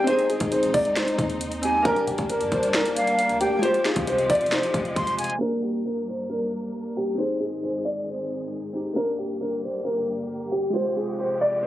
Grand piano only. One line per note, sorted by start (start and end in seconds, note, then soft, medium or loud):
0.07 0.24 C5 loud
0.29 0.47 G#4 medium
0.52 0.69 C5 medium
0.74 0.91 D5 medium
0.97 1.82 C5 medium
1.85 2.02 A#4 loud
2.07 2.24 G4 medium
2.30 2.47 A#4 medium
2.52 2.69 C5 medium
2.74 3.37 A#4 medium
3.41 3.58 G4 medium
3.63 3.80 C5 loud
3.86 4.03 G#4 medium
4.08 4.25 C5 medium
4.30 4.47 D5 medium
4.52 5.37 C5 medium
5.41 5.58 A#4 loud
5.63 5.80 G4 medium
5.85 6.02 A#4 medium
6.08 6.25 C5 medium
6.30 6.92 A#4 medium
6.97 7.14 G4 medium
7.18 7.35 C5 loud
7.40 7.58 G#4 medium
7.63 7.80 C5 medium
7.85 8.02 D5 medium
8.08 8.93 C5 medium
8.96 9.13 A#4 loud
9.19 9.36 G4 medium
9.41 9.58 A#4 medium
9.63 9.80 C5 medium
9.85 10.48 A#4 medium
10.52 10.69 G4 medium
10.74 10.91 C5 loud
10.97 11.14 G#4 medium
11.19 11.36 C5 medium
11.41 11.58 D5 medium
11.63 11.67 C5 medium